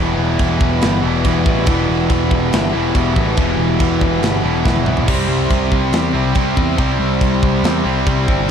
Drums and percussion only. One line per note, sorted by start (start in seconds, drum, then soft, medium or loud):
0.39 kick medium
0.39 china medium
0.61 kick medium
0.81 snare loud
0.81 china medium
1.24 kick medium
1.24 china medium
1.46 kick loud
1.66 kick loud
1.66 china medium
2.10 kick medium
2.10 china medium
2.31 kick medium
2.53 snare loud
2.53 china medium
2.95 kick loud
2.95 china medium
3.16 kick medium
3.37 kick loud
3.37 china medium
3.80 kick medium
3.80 china medium
4.01 kick medium
4.23 snare loud
4.23 china medium
4.65 kick medium
4.65 snare medium
4.76 high tom medium
4.86 mid tom loud
4.97 floor tom loud
5.08 kick loud
5.08 crash loud
5.08 china medium
5.50 kick medium
5.50 china medium
5.72 kick medium
5.93 snare loud
5.93 china medium
6.35 kick loud
6.35 china medium
6.57 kick loud
6.78 kick loud
6.78 china medium
7.21 kick medium
7.21 china medium
7.43 kick medium
7.64 snare loud
7.64 china medium
8.06 kick loud
8.06 china medium
8.28 kick medium